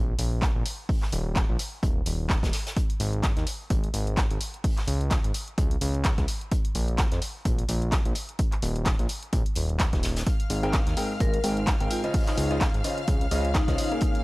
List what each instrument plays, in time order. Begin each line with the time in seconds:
Already playing: analog synth bass A#1
0.18 analog synth bass A#1, closed hi-hat, open hi-hat
0.41 kick, snare, clap, closed hi-hat
0.56 analog synth bass A#1
0.65 closed hi-hat, open hi-hat
0.89 kick, open hi-hat
1.02 snare, clap
1.12 analog synth bass D#1, closed hi-hat, open hi-hat
1.35 kick, snare, clap, closed hi-hat
1.49 analog synth bass A#1
1.59 closed hi-hat, open hi-hat
1.83 analog synth bass D#1, kick, closed hi-hat
2.06 analog synth bass D#1, closed hi-hat, open hi-hat
2.30 kick, snare, clap, closed hi-hat
2.43 analog synth bass D#1, kick, snare, closed hi-hat
2.52 snare, closed hi-hat, open hi-hat
2.66 snare, closed hi-hat
2.77 kick, closed hi-hat
2.90 closed hi-hat
3.00 analog synth bass G#1, closed hi-hat, open hi-hat
3.13 closed hi-hat
3.22 kick, snare, clap, closed hi-hat
3.37 analog synth bass D#2, snare, closed hi-hat
3.46 closed hi-hat, open hi-hat
3.70 analog synth bass G#1, kick, closed hi-hat
3.84 closed hi-hat
3.94 analog synth bass G#1, closed hi-hat, open hi-hat
4.07 closed hi-hat
4.17 kick, snare, clap, closed hi-hat
4.31 analog synth bass G#1, closed hi-hat
4.40 closed hi-hat, open hi-hat
4.54 closed hi-hat
4.64 kick, closed hi-hat, open hi-hat
4.77 snare, clap, closed hi-hat
4.87 analog synth bass C#2, closed hi-hat, open hi-hat
5.01 closed hi-hat
5.10 kick, snare, clap, closed hi-hat
5.24 analog synth bass G#1, closed hi-hat
5.34 closed hi-hat, open hi-hat
5.48 closed hi-hat
5.58 analog synth bass C#2, kick, closed hi-hat
5.71 closed hi-hat
5.81 analog synth bass C#2, closed hi-hat, open hi-hat
5.95 closed hi-hat
6.04 kick, snare, clap, closed hi-hat
6.17 analog synth bass C#2, kick, snare, closed hi-hat
6.28 closed hi-hat, open hi-hat
6.41 closed hi-hat
6.51 kick, closed hi-hat
6.65 closed hi-hat
6.75 analog synth bass A#1, closed hi-hat, open hi-hat
6.88 closed hi-hat
6.98 kick, snare, clap, closed hi-hat
7.11 analog synth bass F2, snare, closed hi-hat
7.22 closed hi-hat, open hi-hat
7.45 analog synth bass A#1, kick, closed hi-hat
7.59 closed hi-hat
7.68 analog synth bass A#1, closed hi-hat, open hi-hat
7.82 closed hi-hat
7.92 kick, snare, clap, closed hi-hat
8.05 analog synth bass A#1, closed hi-hat
8.15 closed hi-hat, open hi-hat
8.29 closed hi-hat
8.39 kick, closed hi-hat
8.52 clap, closed hi-hat
8.62 analog synth bass D#1, closed hi-hat, open hi-hat
8.76 closed hi-hat
8.85 kick, snare, clap, closed hi-hat
8.99 analog synth bass A#1, closed hi-hat
9.09 closed hi-hat, open hi-hat
9.23 closed hi-hat
9.33 analog synth bass A#1, kick, closed hi-hat
9.46 closed hi-hat
9.55 analog synth bass D#1, closed hi-hat, open hi-hat
9.69 closed hi-hat
9.79 kick, snare, clap, closed hi-hat
9.93 analog synth bass D#1, kick, snare, closed hi-hat
10.03 snare, closed hi-hat, open hi-hat
10.16 snare, closed hi-hat
10.26 violin section F5 F6, kick, closed hi-hat
10.40 closed hi-hat
10.50 analog synth bass G#1, closed hi-hat, open hi-hat
10.63 grand piano G#2 C4 G#4 A#4 G5, closed hi-hat
10.73 kick, snare, clap, closed hi-hat
10.87 analog synth bass D#2, snare, closed hi-hat
10.97 grand piano G#2 C4 G#4 A#4 G5, closed hi-hat, open hi-hat
11.20 analog synth bass G#1, vibraphone A#4, kick, closed hi-hat
11.34 closed hi-hat
11.44 analog synth bass G#1, grand piano G#2 C4 G#4 A#4 G5, closed hi-hat, open hi-hat
11.57 closed hi-hat
11.67 kick, snare, clap, closed hi-hat
11.80 analog synth bass G#1, grand piano G#2 C4 G#4 A#4 G5, closed hi-hat
11.90 vibraphone F4, closed hi-hat, open hi-hat
12.04 grand piano C#3 C#4 F4 C5 D#5, closed hi-hat
12.14 kick, closed hi-hat, open hi-hat
12.27 vibraphone D#4, snare, clap, closed hi-hat
12.37 analog synth bass C#2, closed hi-hat, open hi-hat
12.51 grand piano C#3 C#4 F4 C5 D#5, closed hi-hat
12.61 kick, snare, clap, closed hi-hat
12.74 analog synth bass G#1, closed hi-hat
12.84 grand piano C#3 C#4 F4 C5 D#5, closed hi-hat, open hi-hat
12.98 closed hi-hat
13.07 analog synth bass C#2, kick, closed hi-hat
13.21 closed hi-hat
13.31 analog synth bass C#2, grand piano C#3 C#4 F4 C5 D#5, closed hi-hat, open hi-hat
13.45 closed hi-hat
13.54 vibraphone D#4, kick, snare, clap, closed hi-hat
13.68 analog synth bass C#2, grand piano C#3 C#4 F4 C5 D#5, vibraphone D#4, kick, snare, closed hi-hat
13.78 vibraphone D#4, closed hi-hat, open hi-hat
13.91 grand piano A#2 C#4 G#4 A#4 F5, closed hi-hat
14.01 kick, closed hi-hat
14.15 closed hi-hat